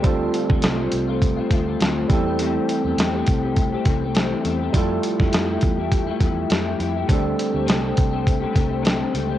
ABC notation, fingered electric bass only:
X:1
M:4/4
L:1/16
Q:"Swing 16ths" 1/4=102
K:C
V:1 name="Fingered electric bass" clef=bass
D,,2 z D,, C,,2 C,,4 D,,2 D,,2 E,,2- | E,,2 z E,, E,,2 C,,4 C,,4 E,,2 | F,,2 z F,, F,,2 E,,4 E,,2 F,,2 F,,2 | D,,2 z D,, C,,2 C,,4 C,,4 _D,,2 |]